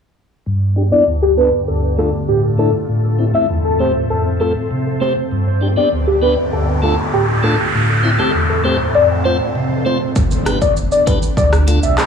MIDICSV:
0, 0, Header, 1, 8, 480
1, 0, Start_track
1, 0, Tempo, 606061
1, 367, Time_signature, 4, 2, 24, 8
1, 9552, End_track
2, 0, Start_track
2, 0, Title_t, "Soft synth lead"
2, 0, Program_c, 0, 80
2, 728, Note_on_c, 0, 74, 81
2, 828, Note_off_c, 0, 74, 0
2, 968, Note_on_c, 0, 67, 78
2, 1069, Note_off_c, 0, 67, 0
2, 1089, Note_on_c, 0, 71, 81
2, 1189, Note_off_c, 0, 71, 0
2, 1329, Note_on_c, 0, 69, 78
2, 1429, Note_off_c, 0, 69, 0
2, 1570, Note_on_c, 0, 69, 81
2, 1669, Note_off_c, 0, 69, 0
2, 1809, Note_on_c, 0, 67, 87
2, 1909, Note_off_c, 0, 67, 0
2, 2049, Note_on_c, 0, 69, 78
2, 2149, Note_off_c, 0, 69, 0
2, 2649, Note_on_c, 0, 76, 77
2, 2749, Note_off_c, 0, 76, 0
2, 2888, Note_on_c, 0, 69, 74
2, 2988, Note_off_c, 0, 69, 0
2, 3009, Note_on_c, 0, 72, 75
2, 3109, Note_off_c, 0, 72, 0
2, 3248, Note_on_c, 0, 69, 78
2, 3349, Note_off_c, 0, 69, 0
2, 3489, Note_on_c, 0, 69, 83
2, 3589, Note_off_c, 0, 69, 0
2, 3969, Note_on_c, 0, 72, 74
2, 4069, Note_off_c, 0, 72, 0
2, 4570, Note_on_c, 0, 74, 82
2, 4669, Note_off_c, 0, 74, 0
2, 4810, Note_on_c, 0, 67, 78
2, 4910, Note_off_c, 0, 67, 0
2, 4929, Note_on_c, 0, 71, 79
2, 5029, Note_off_c, 0, 71, 0
2, 5170, Note_on_c, 0, 69, 80
2, 5269, Note_off_c, 0, 69, 0
2, 5410, Note_on_c, 0, 69, 80
2, 5509, Note_off_c, 0, 69, 0
2, 5650, Note_on_c, 0, 67, 87
2, 5750, Note_off_c, 0, 67, 0
2, 5890, Note_on_c, 0, 69, 74
2, 5989, Note_off_c, 0, 69, 0
2, 6489, Note_on_c, 0, 69, 80
2, 6589, Note_off_c, 0, 69, 0
2, 6728, Note_on_c, 0, 69, 74
2, 6829, Note_off_c, 0, 69, 0
2, 6848, Note_on_c, 0, 72, 76
2, 6949, Note_off_c, 0, 72, 0
2, 7087, Note_on_c, 0, 74, 81
2, 7188, Note_off_c, 0, 74, 0
2, 7327, Note_on_c, 0, 72, 84
2, 7428, Note_off_c, 0, 72, 0
2, 7807, Note_on_c, 0, 72, 78
2, 7908, Note_off_c, 0, 72, 0
2, 8408, Note_on_c, 0, 74, 79
2, 8508, Note_off_c, 0, 74, 0
2, 8647, Note_on_c, 0, 74, 85
2, 8748, Note_off_c, 0, 74, 0
2, 8768, Note_on_c, 0, 71, 83
2, 8868, Note_off_c, 0, 71, 0
2, 9008, Note_on_c, 0, 74, 88
2, 9109, Note_off_c, 0, 74, 0
2, 9369, Note_on_c, 0, 76, 75
2, 9469, Note_off_c, 0, 76, 0
2, 9552, End_track
3, 0, Start_track
3, 0, Title_t, "Ambient pad"
3, 0, Program_c, 1, 92
3, 369, Note_on_c, 1, 50, 72
3, 1328, Note_on_c, 1, 69, 89
3, 2269, Note_off_c, 1, 50, 0
3, 2288, Note_on_c, 1, 60, 74
3, 4179, Note_off_c, 1, 69, 0
3, 4188, Note_off_c, 1, 60, 0
3, 4208, Note_on_c, 1, 50, 74
3, 5168, Note_on_c, 1, 69, 95
3, 6108, Note_off_c, 1, 50, 0
3, 6130, Note_on_c, 1, 60, 71
3, 7068, Note_off_c, 1, 69, 0
3, 8030, Note_off_c, 1, 60, 0
3, 8047, Note_on_c, 1, 62, 93
3, 9009, Note_on_c, 1, 57, 82
3, 9552, Note_off_c, 1, 57, 0
3, 9552, Note_off_c, 1, 62, 0
3, 9552, End_track
4, 0, Start_track
4, 0, Title_t, "Tonewheel organ"
4, 0, Program_c, 2, 16
4, 367, Note_on_c, 2, 43, 78
4, 602, Note_on_c, 2, 62, 70
4, 613, Note_on_c, 2, 67, 78
4, 653, Note_off_c, 2, 62, 0
4, 658, Note_off_c, 2, 67, 0
4, 721, Note_on_c, 2, 59, 66
4, 725, Note_off_c, 2, 43, 0
4, 727, Note_on_c, 2, 62, 58
4, 733, Note_on_c, 2, 64, 75
4, 821, Note_off_c, 2, 59, 0
4, 824, Note_off_c, 2, 62, 0
4, 826, Note_off_c, 2, 64, 0
4, 848, Note_on_c, 2, 38, 67
4, 1083, Note_on_c, 2, 59, 69
4, 1088, Note_on_c, 2, 62, 63
4, 1093, Note_on_c, 2, 69, 74
4, 1181, Note_off_c, 2, 59, 0
4, 1184, Note_off_c, 2, 62, 0
4, 1186, Note_off_c, 2, 69, 0
4, 1205, Note_off_c, 2, 38, 0
4, 1328, Note_on_c, 2, 38, 70
4, 1562, Note_on_c, 2, 57, 70
4, 1568, Note_on_c, 2, 62, 67
4, 1573, Note_on_c, 2, 65, 79
4, 1661, Note_off_c, 2, 57, 0
4, 1664, Note_off_c, 2, 62, 0
4, 1666, Note_off_c, 2, 65, 0
4, 1685, Note_off_c, 2, 38, 0
4, 1808, Note_on_c, 2, 45, 74
4, 2042, Note_on_c, 2, 57, 72
4, 2046, Note_on_c, 2, 62, 65
4, 2052, Note_on_c, 2, 64, 80
4, 2141, Note_off_c, 2, 57, 0
4, 2143, Note_off_c, 2, 62, 0
4, 2146, Note_off_c, 2, 64, 0
4, 2165, Note_off_c, 2, 45, 0
4, 2287, Note_on_c, 2, 45, 82
4, 2523, Note_on_c, 2, 60, 70
4, 2534, Note_on_c, 2, 64, 78
4, 2574, Note_off_c, 2, 60, 0
4, 2579, Note_off_c, 2, 64, 0
4, 2644, Note_off_c, 2, 45, 0
4, 2645, Note_on_c, 2, 57, 65
4, 2650, Note_on_c, 2, 60, 61
4, 2655, Note_on_c, 2, 64, 72
4, 2742, Note_off_c, 2, 57, 0
4, 2745, Note_off_c, 2, 60, 0
4, 2747, Note_off_c, 2, 64, 0
4, 2770, Note_on_c, 2, 40, 68
4, 3004, Note_on_c, 2, 57, 70
4, 3010, Note_on_c, 2, 60, 63
4, 3015, Note_on_c, 2, 67, 77
4, 3102, Note_off_c, 2, 57, 0
4, 3105, Note_off_c, 2, 60, 0
4, 3108, Note_off_c, 2, 67, 0
4, 3126, Note_off_c, 2, 40, 0
4, 3248, Note_on_c, 2, 41, 66
4, 3484, Note_on_c, 2, 57, 72
4, 3489, Note_on_c, 2, 60, 64
4, 3494, Note_on_c, 2, 65, 78
4, 3582, Note_off_c, 2, 57, 0
4, 3584, Note_off_c, 2, 60, 0
4, 3587, Note_off_c, 2, 65, 0
4, 3605, Note_off_c, 2, 41, 0
4, 3728, Note_on_c, 2, 48, 85
4, 3963, Note_on_c, 2, 57, 73
4, 3968, Note_on_c, 2, 60, 65
4, 3973, Note_on_c, 2, 67, 81
4, 4061, Note_off_c, 2, 57, 0
4, 4064, Note_off_c, 2, 60, 0
4, 4067, Note_off_c, 2, 67, 0
4, 4085, Note_off_c, 2, 48, 0
4, 4209, Note_on_c, 2, 43, 84
4, 4443, Note_on_c, 2, 62, 72
4, 4455, Note_on_c, 2, 67, 80
4, 4493, Note_off_c, 2, 62, 0
4, 4499, Note_off_c, 2, 67, 0
4, 4565, Note_off_c, 2, 43, 0
4, 4565, Note_on_c, 2, 59, 68
4, 4570, Note_on_c, 2, 62, 61
4, 4575, Note_on_c, 2, 67, 71
4, 4662, Note_off_c, 2, 59, 0
4, 4665, Note_off_c, 2, 62, 0
4, 4667, Note_off_c, 2, 67, 0
4, 4689, Note_on_c, 2, 38, 73
4, 4923, Note_on_c, 2, 59, 71
4, 4929, Note_on_c, 2, 62, 67
4, 4934, Note_on_c, 2, 67, 77
4, 5022, Note_off_c, 2, 59, 0
4, 5024, Note_off_c, 2, 62, 0
4, 5027, Note_off_c, 2, 67, 0
4, 5046, Note_off_c, 2, 38, 0
4, 5169, Note_on_c, 2, 38, 69
4, 5402, Note_on_c, 2, 57, 70
4, 5408, Note_on_c, 2, 62, 64
4, 5413, Note_on_c, 2, 65, 77
4, 5501, Note_off_c, 2, 57, 0
4, 5504, Note_off_c, 2, 62, 0
4, 5507, Note_off_c, 2, 65, 0
4, 5526, Note_off_c, 2, 38, 0
4, 5648, Note_on_c, 2, 45, 69
4, 5882, Note_on_c, 2, 57, 74
4, 5887, Note_on_c, 2, 62, 67
4, 5893, Note_on_c, 2, 65, 81
4, 5981, Note_off_c, 2, 57, 0
4, 5983, Note_off_c, 2, 62, 0
4, 5986, Note_off_c, 2, 65, 0
4, 6005, Note_off_c, 2, 45, 0
4, 6128, Note_on_c, 2, 45, 82
4, 6363, Note_on_c, 2, 60, 72
4, 6373, Note_on_c, 2, 64, 80
4, 6413, Note_off_c, 2, 60, 0
4, 6418, Note_off_c, 2, 64, 0
4, 6483, Note_on_c, 2, 57, 68
4, 6485, Note_off_c, 2, 45, 0
4, 6489, Note_on_c, 2, 60, 62
4, 6494, Note_on_c, 2, 67, 77
4, 6582, Note_off_c, 2, 57, 0
4, 6584, Note_off_c, 2, 60, 0
4, 6587, Note_off_c, 2, 67, 0
4, 6608, Note_on_c, 2, 40, 71
4, 6842, Note_on_c, 2, 57, 73
4, 6847, Note_on_c, 2, 60, 67
4, 6853, Note_on_c, 2, 67, 79
4, 6941, Note_off_c, 2, 57, 0
4, 6943, Note_off_c, 2, 60, 0
4, 6946, Note_off_c, 2, 67, 0
4, 6965, Note_off_c, 2, 40, 0
4, 7087, Note_on_c, 2, 41, 72
4, 7322, Note_on_c, 2, 57, 73
4, 7327, Note_on_c, 2, 60, 68
4, 7332, Note_on_c, 2, 65, 80
4, 7421, Note_off_c, 2, 57, 0
4, 7423, Note_off_c, 2, 60, 0
4, 7426, Note_off_c, 2, 65, 0
4, 7445, Note_off_c, 2, 41, 0
4, 7566, Note_on_c, 2, 48, 88
4, 7802, Note_on_c, 2, 57, 73
4, 7808, Note_on_c, 2, 60, 68
4, 7813, Note_on_c, 2, 65, 81
4, 7901, Note_off_c, 2, 57, 0
4, 7904, Note_off_c, 2, 60, 0
4, 7906, Note_off_c, 2, 65, 0
4, 7924, Note_off_c, 2, 48, 0
4, 8281, Note_on_c, 2, 59, 77
4, 8286, Note_on_c, 2, 62, 72
4, 8288, Note_on_c, 2, 67, 72
4, 8292, Note_on_c, 2, 71, 87
4, 8380, Note_off_c, 2, 59, 0
4, 8383, Note_off_c, 2, 62, 0
4, 8384, Note_off_c, 2, 67, 0
4, 8386, Note_off_c, 2, 71, 0
4, 8762, Note_on_c, 2, 59, 77
4, 8765, Note_on_c, 2, 62, 72
4, 8769, Note_on_c, 2, 67, 69
4, 8773, Note_on_c, 2, 69, 83
4, 8861, Note_off_c, 2, 59, 0
4, 8862, Note_off_c, 2, 62, 0
4, 8864, Note_off_c, 2, 67, 0
4, 8866, Note_off_c, 2, 69, 0
4, 9242, Note_on_c, 2, 57, 73
4, 9246, Note_on_c, 2, 62, 71
4, 9249, Note_on_c, 2, 65, 70
4, 9253, Note_on_c, 2, 69, 80
4, 9341, Note_off_c, 2, 57, 0
4, 9343, Note_off_c, 2, 62, 0
4, 9344, Note_off_c, 2, 65, 0
4, 9346, Note_off_c, 2, 69, 0
4, 9552, End_track
5, 0, Start_track
5, 0, Title_t, "Sub bass"
5, 0, Program_c, 3, 38
5, 8047, Note_on_c, 3, 31, 109
5, 8409, Note_on_c, 3, 29, 98
5, 8420, Note_off_c, 3, 31, 0
5, 8626, Note_off_c, 3, 29, 0
5, 8768, Note_on_c, 3, 31, 95
5, 8876, Note_off_c, 3, 31, 0
5, 9006, Note_on_c, 3, 38, 109
5, 9335, Note_off_c, 3, 38, 0
5, 9367, Note_on_c, 3, 35, 92
5, 9476, Note_off_c, 3, 35, 0
5, 9552, End_track
6, 0, Start_track
6, 0, Title_t, "Impact"
6, 0, Program_c, 4, 103
6, 8047, Note_on_c, 4, 60, 82
6, 9552, Note_off_c, 4, 60, 0
6, 9552, End_track
7, 0, Start_track
7, 0, Title_t, "Noise sweep"
7, 0, Program_c, 5, 103
7, 4208, Note_on_c, 5, 60, 80
7, 8048, Note_off_c, 5, 60, 0
7, 9552, End_track
8, 0, Start_track
8, 0, Title_t, "Drums"
8, 8046, Note_on_c, 9, 82, 80
8, 8047, Note_on_c, 9, 36, 112
8, 8125, Note_off_c, 9, 82, 0
8, 8126, Note_off_c, 9, 36, 0
8, 8165, Note_on_c, 9, 82, 60
8, 8244, Note_off_c, 9, 82, 0
8, 8287, Note_on_c, 9, 37, 100
8, 8288, Note_on_c, 9, 42, 82
8, 8288, Note_on_c, 9, 82, 59
8, 8366, Note_off_c, 9, 37, 0
8, 8367, Note_off_c, 9, 42, 0
8, 8367, Note_off_c, 9, 82, 0
8, 8408, Note_on_c, 9, 82, 85
8, 8409, Note_on_c, 9, 36, 89
8, 8488, Note_off_c, 9, 36, 0
8, 8488, Note_off_c, 9, 82, 0
8, 8528, Note_on_c, 9, 82, 76
8, 8607, Note_off_c, 9, 82, 0
8, 8647, Note_on_c, 9, 82, 58
8, 8726, Note_off_c, 9, 82, 0
8, 8768, Note_on_c, 9, 36, 98
8, 8770, Note_on_c, 9, 42, 76
8, 8770, Note_on_c, 9, 82, 55
8, 8847, Note_off_c, 9, 36, 0
8, 8849, Note_off_c, 9, 42, 0
8, 8849, Note_off_c, 9, 82, 0
8, 8889, Note_on_c, 9, 82, 72
8, 8968, Note_off_c, 9, 82, 0
8, 9005, Note_on_c, 9, 36, 95
8, 9010, Note_on_c, 9, 82, 67
8, 9085, Note_off_c, 9, 36, 0
8, 9089, Note_off_c, 9, 82, 0
8, 9129, Note_on_c, 9, 37, 100
8, 9131, Note_on_c, 9, 82, 58
8, 9208, Note_off_c, 9, 37, 0
8, 9211, Note_off_c, 9, 82, 0
8, 9248, Note_on_c, 9, 42, 79
8, 9248, Note_on_c, 9, 82, 59
8, 9327, Note_off_c, 9, 42, 0
8, 9327, Note_off_c, 9, 82, 0
8, 9370, Note_on_c, 9, 82, 91
8, 9449, Note_off_c, 9, 82, 0
8, 9490, Note_on_c, 9, 37, 84
8, 9490, Note_on_c, 9, 39, 81
8, 9490, Note_on_c, 9, 82, 75
8, 9552, Note_off_c, 9, 37, 0
8, 9552, Note_off_c, 9, 39, 0
8, 9552, Note_off_c, 9, 82, 0
8, 9552, End_track
0, 0, End_of_file